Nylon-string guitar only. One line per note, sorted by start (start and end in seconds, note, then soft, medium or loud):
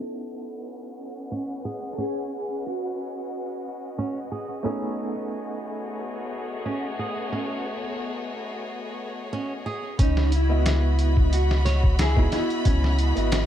1.32 1.52 C#4 medium
1.65 1.95 G#4 medium
1.98 2.30 C#4 medium
3.98 4.18 C#4 medium
4.32 4.62 G#4 medium
4.65 4.97 C#4 medium
6.66 6.85 C#4 medium
6.99 7.29 G#4 medium
7.32 7.64 C#4 medium
9.33 9.52 C#4 medium
9.66 9.96 G#4 medium
9.99 10.31 C#4 loud
11.65 11.95 C#5 loud
11.99 12.31 E4 medium
12.66 12.97 C#4 loud